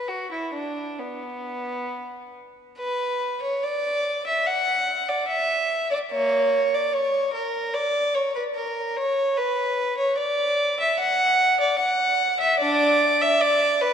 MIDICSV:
0, 0, Header, 1, 2, 480
1, 0, Start_track
1, 0, Key_signature, 2, "minor"
1, 0, Tempo, 902256
1, 1484, Time_signature, 4, 2, 24, 8
1, 1484, Tempo, 840336
1, 2444, Tempo, 823045
1, 3884, Tempo, 807537
1, 8042, End_track
2, 0, Start_track
2, 0, Title_t, "Violin"
2, 0, Program_c, 0, 40
2, 43, Note_on_c, 0, 66, 58
2, 166, Note_off_c, 0, 66, 0
2, 170, Note_on_c, 0, 64, 49
2, 283, Note_on_c, 0, 62, 50
2, 287, Note_off_c, 0, 64, 0
2, 522, Note_off_c, 0, 62, 0
2, 528, Note_on_c, 0, 59, 52
2, 1248, Note_off_c, 0, 59, 0
2, 1479, Note_on_c, 0, 71, 71
2, 1822, Note_off_c, 0, 71, 0
2, 1849, Note_on_c, 0, 73, 64
2, 1965, Note_on_c, 0, 74, 72
2, 1969, Note_off_c, 0, 73, 0
2, 2325, Note_off_c, 0, 74, 0
2, 2330, Note_on_c, 0, 76, 62
2, 2442, Note_on_c, 0, 78, 73
2, 2443, Note_off_c, 0, 76, 0
2, 2800, Note_off_c, 0, 78, 0
2, 2804, Note_on_c, 0, 74, 63
2, 2918, Note_on_c, 0, 76, 67
2, 2922, Note_off_c, 0, 74, 0
2, 3277, Note_off_c, 0, 76, 0
2, 3282, Note_on_c, 0, 74, 65
2, 3328, Note_off_c, 0, 74, 0
2, 3403, Note_on_c, 0, 58, 58
2, 3404, Note_on_c, 0, 73, 73
2, 3742, Note_off_c, 0, 58, 0
2, 3758, Note_off_c, 0, 73, 0
2, 3769, Note_on_c, 0, 74, 66
2, 3880, Note_on_c, 0, 73, 72
2, 3885, Note_off_c, 0, 74, 0
2, 4119, Note_off_c, 0, 73, 0
2, 4119, Note_on_c, 0, 70, 67
2, 4355, Note_off_c, 0, 70, 0
2, 4358, Note_on_c, 0, 74, 73
2, 4599, Note_on_c, 0, 73, 61
2, 4601, Note_off_c, 0, 74, 0
2, 4722, Note_off_c, 0, 73, 0
2, 4725, Note_on_c, 0, 71, 62
2, 4772, Note_off_c, 0, 71, 0
2, 4842, Note_on_c, 0, 70, 70
2, 5079, Note_off_c, 0, 70, 0
2, 5086, Note_on_c, 0, 73, 79
2, 5326, Note_off_c, 0, 73, 0
2, 5328, Note_on_c, 0, 71, 75
2, 5688, Note_off_c, 0, 71, 0
2, 5689, Note_on_c, 0, 73, 73
2, 5808, Note_off_c, 0, 73, 0
2, 5811, Note_on_c, 0, 74, 81
2, 6168, Note_off_c, 0, 74, 0
2, 6181, Note_on_c, 0, 76, 69
2, 6295, Note_off_c, 0, 76, 0
2, 6296, Note_on_c, 0, 78, 82
2, 6645, Note_off_c, 0, 78, 0
2, 6658, Note_on_c, 0, 74, 75
2, 6768, Note_on_c, 0, 78, 77
2, 6771, Note_off_c, 0, 74, 0
2, 7117, Note_off_c, 0, 78, 0
2, 7132, Note_on_c, 0, 76, 80
2, 7244, Note_on_c, 0, 62, 76
2, 7245, Note_on_c, 0, 74, 89
2, 7246, Note_off_c, 0, 76, 0
2, 7582, Note_off_c, 0, 62, 0
2, 7599, Note_off_c, 0, 74, 0
2, 7614, Note_on_c, 0, 76, 82
2, 7729, Note_off_c, 0, 76, 0
2, 7729, Note_on_c, 0, 74, 90
2, 7965, Note_off_c, 0, 74, 0
2, 7969, Note_on_c, 0, 71, 78
2, 8042, Note_off_c, 0, 71, 0
2, 8042, End_track
0, 0, End_of_file